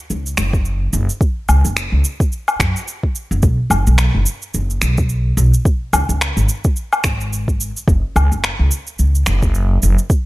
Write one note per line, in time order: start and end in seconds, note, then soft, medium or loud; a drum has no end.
0.10 0.33 C#2 medium
0.10 shaker soft
0.26 shaker soft
0.37 0.89 F#1 medium
0.37 finger snap medium
0.37 shaker medium
0.53 kick medium
0.53 shaker soft
0.65 shaker soft
0.93 1.06 F#1 medium
0.93 shaker medium
1.09 shaker soft
1.21 kick loud
1.21 shaker soft
1.49 1.62 C#2 medium
1.49 low woodblock medium
1.49 shaker medium
1.65 1.86 F#1 medium
1.65 shaker soft
1.77 finger snap medium
1.77 shaker soft
1.92 2.02 C#2 medium
2.04 shaker medium
2.20 kick loud
2.20 shaker soft
2.32 shaker soft
2.48 low woodblock medium
2.48 shaker soft
2.60 2.73 F#2 medium
2.60 finger snap medium
2.60 kick loud
2.60 shaker medium
2.76 shaker soft
2.88 shaker soft
3.03 kick medium
3.15 shaker medium
3.31 3.41 F#1 medium
3.31 shaker soft
3.43 3.56 B1 medium
3.43 kick loud
3.43 shaker soft
3.70 3.83 F#1 medium
3.70 low woodblock medium
3.70 shaker medium
3.87 4.08 B1 medium
3.87 shaker soft
3.98 finger snap medium
3.98 shaker soft
4.14 4.24 F#1 medium
4.26 shaker medium
4.42 shaker soft
4.54 4.77 F#1 medium
4.54 shaker soft
4.70 shaker soft
4.82 5.34 B1 medium
4.82 finger snap medium
4.82 shaker medium
4.98 kick loud
4.98 shaker soft
5.09 shaker soft
5.37 5.50 B1 medium
5.37 shaker medium
5.54 shaker soft
5.65 kick loud
5.65 shaker soft
5.93 6.06 C#2 medium
5.93 low woodblock medium
5.93 shaker medium
6.09 6.30 C#2 medium
6.09 shaker soft
6.21 finger snap medium
6.21 shaker soft
6.37 6.46 G#1 medium
6.37 shaker soft
6.49 shaker medium
6.64 kick loud
6.64 shaker soft
6.76 shaker soft
6.93 low woodblock medium
6.93 shaker soft
7.04 7.69 G#1 medium
7.04 finger snap medium
7.04 kick loud
7.04 shaker medium
7.21 shaker soft
7.33 shaker soft
7.48 kick medium
7.48 shaker soft
7.61 shaker medium
7.77 shaker soft
7.88 8.00 F#1 medium
7.88 kick loud
7.88 shaker soft
8.16 8.28 C#2 medium
8.16 low woodblock medium
8.16 shaker medium
8.32 8.53 F#1 medium
8.32 shaker soft
8.44 finger snap medium
8.44 shaker soft
8.59 8.69 C#2 medium
8.71 shaker medium
8.87 shaker soft
8.99 9.22 C#2 medium
8.99 shaker soft
9.15 shaker soft
9.26 9.79 F#1 medium
9.26 finger snap medium
9.26 shaker medium
9.43 kick loud
9.43 shaker soft
9.54 shaker soft
9.83 9.95 F#1 medium
9.83 shaker medium
9.98 shaker soft
10.10 kick loud
10.10 shaker soft